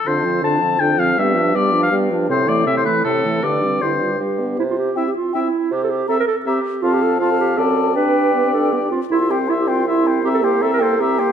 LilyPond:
<<
  \new Staff \with { instrumentName = "Flute" } { \time 3/4 \key c \major \tempo 4 = 160 r2. | r2. | r2. | r2. |
r4 g''4 g''4 | r4 bes''4 bes''4 | a''4 a''4 a''4 | g''2~ g''8 r8 |
c'''8 g''8 c'''8 g''8 c'''8 g''8 | bes''8 g''8 bes''8 g''8 bes''8 g''8 | }
  \new Staff \with { instrumentName = "Oboe" } { \time 3/4 \key c \major c''4 a''4 g''8 f''8 | e''4 d''8. f''8. r8 | c''8 d''8 e''16 c''16 b'8 a'4 | d''4 c''4 r4 |
r4 e''4 e''4 | r4 e''4 e''4 | f''4 f''4 d''4 | d''2~ d''8 r8 |
e''8 c''8 e''8 c''8 e''8 c''8 | e''8 c''8 e''8 c''8 e''8 c''8 | }
  \new Staff \with { instrumentName = "Clarinet" } { \time 3/4 \key c \major d'8 c'8 d'8 c'8 d'8 c'8 | b8 d'8 b8 d'8 b8 d'8 | c'8 a8 c'8 a8 c'8 a8 | d'8 c'8 e'8 f'8 g'4 |
e'16 f'16 g'8 e'16 g'16 f'8 e'4 | g'16 a'16 g'8 a'16 bes'16 a'8 g'4 | f'16 g'16 a'8 f'16 a'16 g'8 a'4 | b'4. a'8 g'8 f'8 |
e'16 f'16 g'8 e'16 g'16 f'8 e'4 | g'16 a'16 g'8 a'16 bes'16 a'8 g'4 | }
  \new Staff \with { instrumentName = "French horn" } { \time 3/4 \key c \major d8 f8 d8 f8 d8 f8 | g8 f8 g8 f8 g8 f8 | c8 e8 c8 e8 c8 e8 | d8 g8 d8 g8 g8 b8 |
r4 c'4 c'4 | r4 c'4 c'4 | c'4 c'4 c'4 | d'4 b16 c'16 d'8 b16 d'16 c'8 |
e'8 c'8 e'8 c'8 e'8 c'8 | c'8 bes8 c'8 bes8 c'8 bes8 | }
  \new Staff \with { instrumentName = "Bassoon" } { \clef bass \time 3/4 \key c \major f,4 f,4 f,4 | g,4 g,4 g,4 | a,4 a,4 a,4 | g,4 g,4 g,4 |
c4 r2 | c4 r2 | f,2 fis,4 | g,2~ g,8 r8 |
c,2.~ | c,2. | }
>>